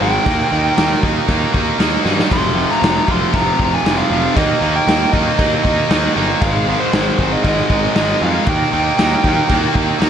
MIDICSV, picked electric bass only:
0, 0, Header, 1, 2, 480
1, 0, Start_track
1, 0, Tempo, 513259
1, 241, Time_signature, 4, 2, 24, 8
1, 9442, End_track
2, 0, Start_track
2, 0, Title_t, "Picked electric bass"
2, 0, Program_c, 0, 34
2, 11, Note_on_c, 0, 32, 90
2, 160, Note_off_c, 0, 32, 0
2, 245, Note_on_c, 0, 39, 91
2, 396, Note_off_c, 0, 39, 0
2, 490, Note_on_c, 0, 39, 91
2, 639, Note_off_c, 0, 39, 0
2, 730, Note_on_c, 0, 39, 101
2, 879, Note_off_c, 0, 39, 0
2, 964, Note_on_c, 0, 39, 92
2, 1115, Note_off_c, 0, 39, 0
2, 1202, Note_on_c, 0, 39, 96
2, 1354, Note_off_c, 0, 39, 0
2, 1444, Note_on_c, 0, 39, 95
2, 1595, Note_off_c, 0, 39, 0
2, 1673, Note_on_c, 0, 39, 91
2, 1828, Note_off_c, 0, 39, 0
2, 1918, Note_on_c, 0, 43, 91
2, 2071, Note_off_c, 0, 43, 0
2, 2162, Note_on_c, 0, 29, 89
2, 2466, Note_off_c, 0, 29, 0
2, 2639, Note_on_c, 0, 29, 100
2, 2791, Note_off_c, 0, 29, 0
2, 2881, Note_on_c, 0, 29, 89
2, 3033, Note_off_c, 0, 29, 0
2, 3120, Note_on_c, 0, 29, 95
2, 3272, Note_off_c, 0, 29, 0
2, 3363, Note_on_c, 0, 29, 97
2, 3514, Note_off_c, 0, 29, 0
2, 3593, Note_on_c, 0, 29, 96
2, 3747, Note_off_c, 0, 29, 0
2, 3837, Note_on_c, 0, 29, 98
2, 3990, Note_off_c, 0, 29, 0
2, 4080, Note_on_c, 0, 39, 93
2, 4232, Note_off_c, 0, 39, 0
2, 4313, Note_on_c, 0, 39, 93
2, 4467, Note_off_c, 0, 39, 0
2, 4558, Note_on_c, 0, 39, 100
2, 4711, Note_off_c, 0, 39, 0
2, 4803, Note_on_c, 0, 39, 94
2, 4954, Note_off_c, 0, 39, 0
2, 5040, Note_on_c, 0, 39, 98
2, 5193, Note_off_c, 0, 39, 0
2, 5282, Note_on_c, 0, 39, 89
2, 5434, Note_off_c, 0, 39, 0
2, 5523, Note_on_c, 0, 39, 95
2, 5675, Note_off_c, 0, 39, 0
2, 5764, Note_on_c, 0, 31, 91
2, 5916, Note_off_c, 0, 31, 0
2, 6001, Note_on_c, 0, 32, 98
2, 6306, Note_off_c, 0, 32, 0
2, 6489, Note_on_c, 0, 32, 97
2, 6639, Note_off_c, 0, 32, 0
2, 6721, Note_on_c, 0, 32, 95
2, 6874, Note_off_c, 0, 32, 0
2, 6962, Note_on_c, 0, 32, 97
2, 7114, Note_off_c, 0, 32, 0
2, 7199, Note_on_c, 0, 32, 94
2, 7352, Note_off_c, 0, 32, 0
2, 7448, Note_on_c, 0, 32, 93
2, 7598, Note_off_c, 0, 32, 0
2, 7681, Note_on_c, 0, 41, 90
2, 7834, Note_off_c, 0, 41, 0
2, 7922, Note_on_c, 0, 39, 94
2, 8074, Note_off_c, 0, 39, 0
2, 8167, Note_on_c, 0, 39, 90
2, 8318, Note_off_c, 0, 39, 0
2, 8404, Note_on_c, 0, 39, 99
2, 8556, Note_off_c, 0, 39, 0
2, 8642, Note_on_c, 0, 39, 85
2, 8794, Note_off_c, 0, 39, 0
2, 8882, Note_on_c, 0, 39, 89
2, 9034, Note_off_c, 0, 39, 0
2, 9121, Note_on_c, 0, 39, 93
2, 9274, Note_off_c, 0, 39, 0
2, 9358, Note_on_c, 0, 39, 98
2, 9442, Note_off_c, 0, 39, 0
2, 9442, End_track
0, 0, End_of_file